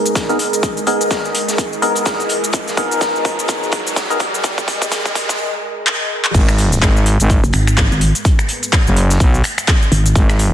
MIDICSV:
0, 0, Header, 1, 7, 480
1, 0, Start_track
1, 0, Key_signature, 5, "minor"
1, 0, Tempo, 476190
1, 637, Time_signature, 4, 2, 24, 8
1, 10620, End_track
2, 0, Start_track
2, 0, Title_t, "Analog synth pad"
2, 0, Program_c, 0, 89
2, 0, Note_on_c, 0, 56, 77
2, 0, Note_on_c, 0, 68, 76
2, 0, Note_on_c, 0, 70, 73
2, 0, Note_on_c, 0, 75, 92
2, 6355, Note_off_c, 0, 56, 0
2, 6356, Note_off_c, 0, 68, 0
2, 6356, Note_off_c, 0, 70, 0
2, 6384, Note_off_c, 0, 75, 0
2, 6395, Note_on_c, 0, 56, 84
2, 6395, Note_on_c, 0, 68, 81
2, 6395, Note_on_c, 0, 70, 81
2, 6396, Note_on_c, 0, 71, 93
2, 10620, Note_off_c, 0, 56, 0
2, 10620, Note_off_c, 0, 68, 0
2, 10620, Note_off_c, 0, 70, 0
2, 10620, Note_off_c, 0, 71, 0
2, 10620, End_track
3, 0, Start_track
3, 0, Title_t, "Synth stab"
3, 0, Program_c, 1, 62
3, 0, Note_on_c, 1, 59, 86
3, 0, Note_on_c, 1, 63, 82
3, 0, Note_on_c, 1, 68, 77
3, 0, Note_on_c, 1, 70, 94
3, 262, Note_off_c, 1, 59, 0
3, 262, Note_off_c, 1, 63, 0
3, 262, Note_off_c, 1, 68, 0
3, 262, Note_off_c, 1, 70, 0
3, 295, Note_on_c, 1, 59, 89
3, 295, Note_on_c, 1, 63, 82
3, 295, Note_on_c, 1, 68, 81
3, 295, Note_on_c, 1, 70, 102
3, 370, Note_off_c, 1, 59, 0
3, 370, Note_off_c, 1, 63, 0
3, 370, Note_off_c, 1, 68, 0
3, 370, Note_off_c, 1, 70, 0
3, 875, Note_on_c, 1, 59, 92
3, 875, Note_on_c, 1, 63, 80
3, 876, Note_on_c, 1, 68, 85
3, 876, Note_on_c, 1, 70, 100
3, 1034, Note_off_c, 1, 59, 0
3, 1034, Note_off_c, 1, 63, 0
3, 1034, Note_off_c, 1, 68, 0
3, 1035, Note_off_c, 1, 70, 0
3, 1836, Note_on_c, 1, 59, 100
3, 1836, Note_on_c, 1, 63, 93
3, 1836, Note_on_c, 1, 68, 91
3, 1836, Note_on_c, 1, 70, 105
3, 1940, Note_off_c, 1, 59, 0
3, 1940, Note_off_c, 1, 63, 0
3, 1940, Note_off_c, 1, 68, 0
3, 1940, Note_off_c, 1, 70, 0
3, 2795, Note_on_c, 1, 63, 81
3, 2795, Note_on_c, 1, 70, 102
3, 2796, Note_on_c, 1, 59, 85
3, 2796, Note_on_c, 1, 68, 81
3, 4102, Note_off_c, 1, 59, 0
3, 4102, Note_off_c, 1, 63, 0
3, 4102, Note_off_c, 1, 70, 0
3, 4103, Note_off_c, 1, 68, 0
3, 4136, Note_on_c, 1, 59, 93
3, 4136, Note_on_c, 1, 63, 82
3, 4136, Note_on_c, 1, 68, 83
3, 4136, Note_on_c, 1, 70, 105
3, 4210, Note_off_c, 1, 59, 0
3, 4210, Note_off_c, 1, 68, 0
3, 4210, Note_off_c, 1, 70, 0
3, 4211, Note_off_c, 1, 63, 0
3, 10620, End_track
4, 0, Start_track
4, 0, Title_t, "FM bass"
4, 0, Program_c, 2, 39
4, 6396, Note_on_c, 2, 32, 96
4, 6860, Note_off_c, 2, 32, 0
4, 6876, Note_on_c, 2, 32, 98
4, 7234, Note_off_c, 2, 32, 0
4, 7256, Note_on_c, 2, 32, 95
4, 7474, Note_off_c, 2, 32, 0
4, 8936, Note_on_c, 2, 30, 99
4, 9260, Note_off_c, 2, 30, 0
4, 9276, Note_on_c, 2, 35, 99
4, 9500, Note_off_c, 2, 35, 0
4, 10236, Note_on_c, 2, 32, 93
4, 10620, Note_off_c, 2, 32, 0
4, 10620, End_track
5, 0, Start_track
5, 0, Title_t, "Wobble bass"
5, 0, Program_c, 3, 39
5, 7496, Note_on_c, 3, 30, 100
5, 7580, Note_off_c, 3, 30, 0
5, 7595, Note_on_c, 3, 32, 94
5, 7954, Note_off_c, 3, 32, 0
5, 7976, Note_on_c, 3, 32, 100
5, 8194, Note_off_c, 3, 32, 0
5, 9995, Note_on_c, 3, 32, 99
5, 10220, Note_off_c, 3, 32, 0
5, 10620, End_track
6, 0, Start_track
6, 0, Title_t, "Riser"
6, 0, Program_c, 4, 103
6, 0, Note_on_c, 4, 60, 76
6, 5437, Note_off_c, 4, 60, 0
6, 10620, End_track
7, 0, Start_track
7, 0, Title_t, "Drums"
7, 56, Note_on_c, 9, 42, 34
7, 60, Note_on_c, 9, 82, 68
7, 154, Note_on_c, 9, 38, 112
7, 156, Note_off_c, 9, 42, 0
7, 156, Note_on_c, 9, 36, 96
7, 156, Note_on_c, 9, 42, 77
7, 161, Note_off_c, 9, 82, 0
7, 161, Note_on_c, 9, 82, 56
7, 165, Note_off_c, 9, 42, 0
7, 165, Note_on_c, 9, 42, 91
7, 255, Note_off_c, 9, 38, 0
7, 256, Note_off_c, 9, 36, 0
7, 262, Note_off_c, 9, 82, 0
7, 266, Note_off_c, 9, 42, 0
7, 296, Note_on_c, 9, 42, 36
7, 301, Note_on_c, 9, 82, 33
7, 396, Note_on_c, 9, 46, 105
7, 397, Note_off_c, 9, 42, 0
7, 399, Note_on_c, 9, 42, 65
7, 401, Note_off_c, 9, 82, 0
7, 496, Note_off_c, 9, 46, 0
7, 500, Note_off_c, 9, 42, 0
7, 536, Note_on_c, 9, 42, 35
7, 541, Note_on_c, 9, 82, 67
7, 634, Note_off_c, 9, 42, 0
7, 634, Note_on_c, 9, 42, 84
7, 636, Note_off_c, 9, 42, 0
7, 636, Note_on_c, 9, 36, 98
7, 636, Note_on_c, 9, 42, 73
7, 640, Note_off_c, 9, 82, 0
7, 640, Note_on_c, 9, 82, 57
7, 736, Note_off_c, 9, 36, 0
7, 737, Note_off_c, 9, 42, 0
7, 741, Note_off_c, 9, 82, 0
7, 776, Note_on_c, 9, 42, 35
7, 781, Note_on_c, 9, 82, 33
7, 874, Note_off_c, 9, 42, 0
7, 874, Note_on_c, 9, 42, 69
7, 876, Note_on_c, 9, 46, 98
7, 881, Note_off_c, 9, 82, 0
7, 975, Note_off_c, 9, 42, 0
7, 977, Note_off_c, 9, 46, 0
7, 1016, Note_on_c, 9, 42, 51
7, 1021, Note_on_c, 9, 82, 70
7, 1116, Note_on_c, 9, 36, 96
7, 1116, Note_on_c, 9, 38, 114
7, 1117, Note_off_c, 9, 42, 0
7, 1117, Note_on_c, 9, 42, 74
7, 1121, Note_off_c, 9, 82, 0
7, 1121, Note_on_c, 9, 82, 56
7, 1216, Note_off_c, 9, 38, 0
7, 1217, Note_off_c, 9, 36, 0
7, 1217, Note_off_c, 9, 42, 0
7, 1222, Note_off_c, 9, 82, 0
7, 1261, Note_on_c, 9, 82, 35
7, 1357, Note_on_c, 9, 42, 73
7, 1357, Note_on_c, 9, 46, 104
7, 1362, Note_off_c, 9, 82, 0
7, 1458, Note_off_c, 9, 42, 0
7, 1458, Note_off_c, 9, 46, 0
7, 1494, Note_on_c, 9, 38, 43
7, 1497, Note_on_c, 9, 42, 53
7, 1501, Note_on_c, 9, 82, 72
7, 1595, Note_off_c, 9, 38, 0
7, 1596, Note_on_c, 9, 36, 101
7, 1597, Note_off_c, 9, 42, 0
7, 1597, Note_on_c, 9, 42, 76
7, 1598, Note_off_c, 9, 42, 0
7, 1598, Note_on_c, 9, 42, 94
7, 1601, Note_off_c, 9, 82, 0
7, 1601, Note_on_c, 9, 82, 56
7, 1696, Note_off_c, 9, 36, 0
7, 1699, Note_off_c, 9, 42, 0
7, 1702, Note_off_c, 9, 82, 0
7, 1742, Note_on_c, 9, 82, 35
7, 1838, Note_on_c, 9, 42, 65
7, 1838, Note_on_c, 9, 46, 100
7, 1843, Note_off_c, 9, 82, 0
7, 1938, Note_off_c, 9, 42, 0
7, 1939, Note_off_c, 9, 46, 0
7, 1970, Note_on_c, 9, 42, 46
7, 1977, Note_off_c, 9, 42, 0
7, 1977, Note_on_c, 9, 42, 35
7, 1982, Note_on_c, 9, 82, 73
7, 2071, Note_off_c, 9, 42, 0
7, 2071, Note_on_c, 9, 42, 92
7, 2075, Note_on_c, 9, 38, 116
7, 2076, Note_on_c, 9, 36, 101
7, 2077, Note_off_c, 9, 42, 0
7, 2077, Note_on_c, 9, 42, 81
7, 2082, Note_off_c, 9, 82, 0
7, 2082, Note_on_c, 9, 82, 56
7, 2176, Note_off_c, 9, 36, 0
7, 2176, Note_off_c, 9, 38, 0
7, 2178, Note_off_c, 9, 42, 0
7, 2182, Note_off_c, 9, 82, 0
7, 2217, Note_on_c, 9, 42, 36
7, 2221, Note_on_c, 9, 82, 36
7, 2311, Note_off_c, 9, 42, 0
7, 2311, Note_on_c, 9, 42, 69
7, 2317, Note_on_c, 9, 46, 100
7, 2322, Note_off_c, 9, 82, 0
7, 2411, Note_off_c, 9, 42, 0
7, 2418, Note_off_c, 9, 46, 0
7, 2457, Note_on_c, 9, 42, 37
7, 2462, Note_on_c, 9, 82, 70
7, 2548, Note_off_c, 9, 42, 0
7, 2548, Note_on_c, 9, 42, 85
7, 2556, Note_on_c, 9, 36, 100
7, 2557, Note_off_c, 9, 42, 0
7, 2557, Note_on_c, 9, 42, 81
7, 2562, Note_off_c, 9, 82, 0
7, 2562, Note_on_c, 9, 82, 61
7, 2656, Note_off_c, 9, 36, 0
7, 2658, Note_off_c, 9, 42, 0
7, 2662, Note_off_c, 9, 82, 0
7, 2697, Note_on_c, 9, 42, 38
7, 2698, Note_on_c, 9, 38, 39
7, 2701, Note_on_c, 9, 82, 35
7, 2796, Note_on_c, 9, 36, 101
7, 2797, Note_on_c, 9, 46, 102
7, 2798, Note_off_c, 9, 42, 0
7, 2799, Note_off_c, 9, 38, 0
7, 2801, Note_on_c, 9, 42, 63
7, 2802, Note_off_c, 9, 82, 0
7, 2896, Note_off_c, 9, 36, 0
7, 2898, Note_off_c, 9, 46, 0
7, 2902, Note_off_c, 9, 42, 0
7, 2937, Note_on_c, 9, 42, 54
7, 2942, Note_on_c, 9, 82, 71
7, 3033, Note_off_c, 9, 42, 0
7, 3033, Note_on_c, 9, 42, 88
7, 3036, Note_on_c, 9, 36, 97
7, 3036, Note_on_c, 9, 38, 107
7, 3037, Note_off_c, 9, 42, 0
7, 3037, Note_on_c, 9, 42, 78
7, 3042, Note_off_c, 9, 82, 0
7, 3042, Note_on_c, 9, 82, 57
7, 3136, Note_off_c, 9, 36, 0
7, 3137, Note_off_c, 9, 38, 0
7, 3138, Note_off_c, 9, 42, 0
7, 3142, Note_off_c, 9, 82, 0
7, 3182, Note_on_c, 9, 82, 35
7, 3273, Note_on_c, 9, 42, 74
7, 3276, Note_on_c, 9, 36, 103
7, 3277, Note_on_c, 9, 46, 104
7, 3283, Note_off_c, 9, 82, 0
7, 3374, Note_off_c, 9, 42, 0
7, 3377, Note_off_c, 9, 36, 0
7, 3378, Note_off_c, 9, 46, 0
7, 3417, Note_on_c, 9, 42, 56
7, 3421, Note_on_c, 9, 82, 74
7, 3509, Note_off_c, 9, 42, 0
7, 3509, Note_on_c, 9, 42, 88
7, 3516, Note_on_c, 9, 36, 101
7, 3517, Note_off_c, 9, 42, 0
7, 3517, Note_on_c, 9, 42, 82
7, 3522, Note_off_c, 9, 82, 0
7, 3522, Note_on_c, 9, 82, 59
7, 3616, Note_off_c, 9, 36, 0
7, 3618, Note_off_c, 9, 42, 0
7, 3622, Note_off_c, 9, 82, 0
7, 3661, Note_on_c, 9, 82, 35
7, 3746, Note_on_c, 9, 42, 71
7, 3756, Note_on_c, 9, 36, 107
7, 3757, Note_on_c, 9, 46, 94
7, 3762, Note_off_c, 9, 82, 0
7, 3847, Note_off_c, 9, 42, 0
7, 3856, Note_off_c, 9, 36, 0
7, 3858, Note_off_c, 9, 46, 0
7, 3897, Note_on_c, 9, 42, 39
7, 3902, Note_on_c, 9, 82, 71
7, 3995, Note_off_c, 9, 42, 0
7, 3995, Note_on_c, 9, 42, 80
7, 3996, Note_on_c, 9, 36, 106
7, 3997, Note_off_c, 9, 42, 0
7, 3997, Note_on_c, 9, 42, 84
7, 4000, Note_on_c, 9, 38, 125
7, 4002, Note_off_c, 9, 82, 0
7, 4002, Note_on_c, 9, 82, 61
7, 4096, Note_off_c, 9, 36, 0
7, 4098, Note_off_c, 9, 42, 0
7, 4101, Note_off_c, 9, 38, 0
7, 4103, Note_off_c, 9, 82, 0
7, 4137, Note_on_c, 9, 42, 39
7, 4142, Note_on_c, 9, 82, 37
7, 4230, Note_off_c, 9, 42, 0
7, 4230, Note_on_c, 9, 42, 70
7, 4236, Note_on_c, 9, 36, 109
7, 4237, Note_on_c, 9, 46, 101
7, 4242, Note_off_c, 9, 82, 0
7, 4331, Note_off_c, 9, 42, 0
7, 4336, Note_off_c, 9, 36, 0
7, 4338, Note_off_c, 9, 46, 0
7, 4377, Note_on_c, 9, 42, 38
7, 4381, Note_on_c, 9, 82, 69
7, 4471, Note_off_c, 9, 42, 0
7, 4471, Note_on_c, 9, 42, 94
7, 4476, Note_on_c, 9, 36, 105
7, 4477, Note_off_c, 9, 42, 0
7, 4477, Note_on_c, 9, 42, 83
7, 4481, Note_off_c, 9, 82, 0
7, 4481, Note_on_c, 9, 82, 56
7, 4577, Note_off_c, 9, 36, 0
7, 4578, Note_off_c, 9, 42, 0
7, 4582, Note_off_c, 9, 82, 0
7, 4616, Note_on_c, 9, 36, 94
7, 4617, Note_on_c, 9, 42, 39
7, 4621, Note_on_c, 9, 82, 34
7, 4716, Note_off_c, 9, 36, 0
7, 4716, Note_on_c, 9, 36, 100
7, 4717, Note_on_c, 9, 46, 101
7, 4718, Note_off_c, 9, 42, 0
7, 4719, Note_on_c, 9, 42, 72
7, 4722, Note_off_c, 9, 82, 0
7, 4816, Note_off_c, 9, 36, 0
7, 4818, Note_off_c, 9, 46, 0
7, 4820, Note_off_c, 9, 42, 0
7, 4855, Note_on_c, 9, 36, 92
7, 4857, Note_on_c, 9, 42, 56
7, 4861, Note_on_c, 9, 82, 69
7, 4955, Note_off_c, 9, 36, 0
7, 4955, Note_on_c, 9, 36, 100
7, 4957, Note_off_c, 9, 42, 0
7, 4957, Note_on_c, 9, 38, 118
7, 4957, Note_on_c, 9, 42, 95
7, 4961, Note_off_c, 9, 82, 0
7, 4961, Note_on_c, 9, 82, 55
7, 5056, Note_off_c, 9, 36, 0
7, 5058, Note_off_c, 9, 38, 0
7, 5058, Note_off_c, 9, 42, 0
7, 5062, Note_off_c, 9, 82, 0
7, 5095, Note_on_c, 9, 36, 93
7, 5096, Note_on_c, 9, 42, 39
7, 5101, Note_on_c, 9, 82, 36
7, 5195, Note_off_c, 9, 36, 0
7, 5195, Note_on_c, 9, 36, 108
7, 5196, Note_on_c, 9, 46, 104
7, 5197, Note_off_c, 9, 42, 0
7, 5199, Note_on_c, 9, 42, 74
7, 5202, Note_off_c, 9, 82, 0
7, 5296, Note_off_c, 9, 36, 0
7, 5297, Note_off_c, 9, 46, 0
7, 5300, Note_off_c, 9, 42, 0
7, 5327, Note_on_c, 9, 38, 43
7, 5335, Note_on_c, 9, 36, 93
7, 5336, Note_on_c, 9, 42, 58
7, 5341, Note_on_c, 9, 82, 69
7, 5427, Note_off_c, 9, 38, 0
7, 5436, Note_off_c, 9, 36, 0
7, 5437, Note_off_c, 9, 42, 0
7, 5442, Note_off_c, 9, 82, 0
7, 5916, Note_on_c, 9, 39, 114
7, 6017, Note_off_c, 9, 39, 0
7, 6297, Note_on_c, 9, 39, 86
7, 6393, Note_on_c, 9, 42, 89
7, 6396, Note_on_c, 9, 36, 118
7, 6397, Note_off_c, 9, 42, 0
7, 6397, Note_on_c, 9, 42, 68
7, 6397, Note_on_c, 9, 49, 102
7, 6398, Note_off_c, 9, 39, 0
7, 6401, Note_on_c, 9, 82, 55
7, 6497, Note_off_c, 9, 36, 0
7, 6498, Note_off_c, 9, 42, 0
7, 6498, Note_off_c, 9, 49, 0
7, 6502, Note_off_c, 9, 82, 0
7, 6537, Note_on_c, 9, 26, 65
7, 6537, Note_on_c, 9, 42, 39
7, 6538, Note_on_c, 9, 38, 37
7, 6541, Note_on_c, 9, 82, 33
7, 6636, Note_off_c, 9, 42, 0
7, 6636, Note_on_c, 9, 42, 72
7, 6637, Note_on_c, 9, 46, 104
7, 6638, Note_off_c, 9, 26, 0
7, 6639, Note_off_c, 9, 38, 0
7, 6642, Note_off_c, 9, 82, 0
7, 6737, Note_off_c, 9, 42, 0
7, 6737, Note_off_c, 9, 46, 0
7, 6776, Note_on_c, 9, 42, 55
7, 6781, Note_on_c, 9, 82, 65
7, 6876, Note_on_c, 9, 36, 101
7, 6877, Note_off_c, 9, 42, 0
7, 6877, Note_on_c, 9, 42, 69
7, 6878, Note_off_c, 9, 42, 0
7, 6878, Note_on_c, 9, 42, 82
7, 6880, Note_on_c, 9, 38, 109
7, 6880, Note_on_c, 9, 39, 117
7, 6881, Note_off_c, 9, 82, 0
7, 6881, Note_on_c, 9, 82, 54
7, 6976, Note_off_c, 9, 36, 0
7, 6979, Note_off_c, 9, 42, 0
7, 6980, Note_off_c, 9, 38, 0
7, 6981, Note_off_c, 9, 39, 0
7, 6982, Note_off_c, 9, 82, 0
7, 7021, Note_on_c, 9, 82, 34
7, 7116, Note_on_c, 9, 46, 108
7, 7121, Note_on_c, 9, 42, 66
7, 7122, Note_off_c, 9, 82, 0
7, 7217, Note_off_c, 9, 46, 0
7, 7222, Note_off_c, 9, 42, 0
7, 7256, Note_on_c, 9, 42, 58
7, 7261, Note_on_c, 9, 82, 72
7, 7356, Note_off_c, 9, 42, 0
7, 7356, Note_on_c, 9, 36, 121
7, 7356, Note_on_c, 9, 42, 91
7, 7357, Note_off_c, 9, 42, 0
7, 7357, Note_on_c, 9, 42, 65
7, 7361, Note_off_c, 9, 82, 0
7, 7361, Note_on_c, 9, 82, 53
7, 7457, Note_off_c, 9, 36, 0
7, 7458, Note_off_c, 9, 42, 0
7, 7462, Note_off_c, 9, 82, 0
7, 7496, Note_on_c, 9, 42, 38
7, 7501, Note_on_c, 9, 82, 33
7, 7587, Note_off_c, 9, 42, 0
7, 7587, Note_on_c, 9, 42, 64
7, 7596, Note_on_c, 9, 26, 58
7, 7596, Note_on_c, 9, 46, 105
7, 7602, Note_off_c, 9, 82, 0
7, 7688, Note_off_c, 9, 42, 0
7, 7697, Note_off_c, 9, 26, 0
7, 7697, Note_off_c, 9, 46, 0
7, 7736, Note_on_c, 9, 26, 61
7, 7736, Note_on_c, 9, 42, 55
7, 7741, Note_on_c, 9, 82, 67
7, 7832, Note_off_c, 9, 42, 0
7, 7832, Note_on_c, 9, 42, 83
7, 7836, Note_off_c, 9, 42, 0
7, 7836, Note_on_c, 9, 36, 104
7, 7836, Note_on_c, 9, 42, 69
7, 7837, Note_off_c, 9, 26, 0
7, 7838, Note_on_c, 9, 38, 110
7, 7840, Note_on_c, 9, 39, 122
7, 7841, Note_off_c, 9, 82, 0
7, 7841, Note_on_c, 9, 82, 57
7, 7937, Note_off_c, 9, 36, 0
7, 7937, Note_off_c, 9, 42, 0
7, 7938, Note_off_c, 9, 38, 0
7, 7941, Note_off_c, 9, 39, 0
7, 7942, Note_off_c, 9, 82, 0
7, 7981, Note_on_c, 9, 82, 35
7, 8074, Note_on_c, 9, 42, 66
7, 8076, Note_on_c, 9, 46, 100
7, 8081, Note_off_c, 9, 82, 0
7, 8175, Note_off_c, 9, 42, 0
7, 8177, Note_off_c, 9, 46, 0
7, 8216, Note_on_c, 9, 42, 55
7, 8221, Note_on_c, 9, 82, 67
7, 8316, Note_off_c, 9, 42, 0
7, 8316, Note_on_c, 9, 36, 120
7, 8316, Note_on_c, 9, 42, 67
7, 8321, Note_off_c, 9, 82, 0
7, 8321, Note_on_c, 9, 82, 54
7, 8327, Note_off_c, 9, 42, 0
7, 8327, Note_on_c, 9, 42, 95
7, 8417, Note_off_c, 9, 36, 0
7, 8422, Note_off_c, 9, 82, 0
7, 8428, Note_off_c, 9, 42, 0
7, 8456, Note_on_c, 9, 26, 64
7, 8456, Note_on_c, 9, 42, 38
7, 8461, Note_on_c, 9, 82, 32
7, 8553, Note_off_c, 9, 42, 0
7, 8553, Note_on_c, 9, 42, 76
7, 8556, Note_on_c, 9, 46, 112
7, 8557, Note_off_c, 9, 26, 0
7, 8562, Note_off_c, 9, 82, 0
7, 8654, Note_off_c, 9, 42, 0
7, 8657, Note_off_c, 9, 46, 0
7, 8697, Note_on_c, 9, 42, 53
7, 8701, Note_on_c, 9, 82, 63
7, 8794, Note_on_c, 9, 38, 106
7, 8796, Note_on_c, 9, 36, 105
7, 8798, Note_off_c, 9, 42, 0
7, 8798, Note_on_c, 9, 42, 66
7, 8799, Note_off_c, 9, 42, 0
7, 8799, Note_on_c, 9, 42, 84
7, 8801, Note_on_c, 9, 39, 123
7, 8802, Note_off_c, 9, 82, 0
7, 8802, Note_on_c, 9, 82, 54
7, 8895, Note_off_c, 9, 38, 0
7, 8897, Note_off_c, 9, 36, 0
7, 8900, Note_off_c, 9, 42, 0
7, 8902, Note_off_c, 9, 39, 0
7, 8903, Note_off_c, 9, 82, 0
7, 8942, Note_on_c, 9, 82, 34
7, 9037, Note_on_c, 9, 46, 113
7, 9042, Note_off_c, 9, 82, 0
7, 9042, Note_on_c, 9, 42, 67
7, 9137, Note_off_c, 9, 46, 0
7, 9143, Note_off_c, 9, 42, 0
7, 9171, Note_on_c, 9, 38, 49
7, 9176, Note_on_c, 9, 42, 56
7, 9181, Note_on_c, 9, 82, 69
7, 9272, Note_off_c, 9, 38, 0
7, 9275, Note_off_c, 9, 42, 0
7, 9275, Note_on_c, 9, 42, 85
7, 9276, Note_on_c, 9, 36, 125
7, 9277, Note_off_c, 9, 42, 0
7, 9277, Note_on_c, 9, 42, 66
7, 9281, Note_off_c, 9, 82, 0
7, 9281, Note_on_c, 9, 82, 51
7, 9377, Note_off_c, 9, 36, 0
7, 9378, Note_off_c, 9, 42, 0
7, 9382, Note_off_c, 9, 82, 0
7, 9417, Note_on_c, 9, 42, 39
7, 9421, Note_on_c, 9, 82, 32
7, 9512, Note_off_c, 9, 42, 0
7, 9512, Note_on_c, 9, 42, 69
7, 9517, Note_on_c, 9, 26, 59
7, 9517, Note_on_c, 9, 46, 110
7, 9522, Note_off_c, 9, 82, 0
7, 9613, Note_off_c, 9, 42, 0
7, 9618, Note_off_c, 9, 26, 0
7, 9618, Note_off_c, 9, 46, 0
7, 9654, Note_on_c, 9, 42, 48
7, 9657, Note_off_c, 9, 42, 0
7, 9657, Note_on_c, 9, 26, 65
7, 9657, Note_on_c, 9, 42, 54
7, 9661, Note_on_c, 9, 82, 63
7, 9756, Note_on_c, 9, 36, 111
7, 9757, Note_off_c, 9, 42, 0
7, 9757, Note_on_c, 9, 42, 67
7, 9758, Note_off_c, 9, 26, 0
7, 9761, Note_on_c, 9, 38, 114
7, 9761, Note_on_c, 9, 39, 126
7, 9762, Note_off_c, 9, 42, 0
7, 9762, Note_off_c, 9, 82, 0
7, 9762, Note_on_c, 9, 42, 82
7, 9762, Note_on_c, 9, 82, 54
7, 9857, Note_off_c, 9, 36, 0
7, 9862, Note_off_c, 9, 38, 0
7, 9862, Note_off_c, 9, 39, 0
7, 9863, Note_off_c, 9, 42, 0
7, 9863, Note_off_c, 9, 82, 0
7, 9901, Note_on_c, 9, 82, 32
7, 9997, Note_on_c, 9, 42, 61
7, 9997, Note_on_c, 9, 46, 111
7, 10002, Note_off_c, 9, 82, 0
7, 10098, Note_off_c, 9, 42, 0
7, 10098, Note_off_c, 9, 46, 0
7, 10137, Note_on_c, 9, 42, 57
7, 10142, Note_on_c, 9, 82, 67
7, 10236, Note_on_c, 9, 36, 122
7, 10237, Note_off_c, 9, 42, 0
7, 10237, Note_on_c, 9, 42, 64
7, 10239, Note_off_c, 9, 42, 0
7, 10239, Note_on_c, 9, 42, 79
7, 10241, Note_off_c, 9, 82, 0
7, 10241, Note_on_c, 9, 82, 52
7, 10337, Note_off_c, 9, 36, 0
7, 10340, Note_off_c, 9, 42, 0
7, 10342, Note_off_c, 9, 82, 0
7, 10368, Note_on_c, 9, 38, 38
7, 10377, Note_on_c, 9, 26, 67
7, 10377, Note_on_c, 9, 42, 37
7, 10382, Note_on_c, 9, 82, 31
7, 10469, Note_off_c, 9, 38, 0
7, 10474, Note_off_c, 9, 42, 0
7, 10474, Note_on_c, 9, 42, 75
7, 10477, Note_on_c, 9, 46, 109
7, 10478, Note_off_c, 9, 26, 0
7, 10482, Note_off_c, 9, 82, 0
7, 10575, Note_off_c, 9, 42, 0
7, 10577, Note_off_c, 9, 46, 0
7, 10620, End_track
0, 0, End_of_file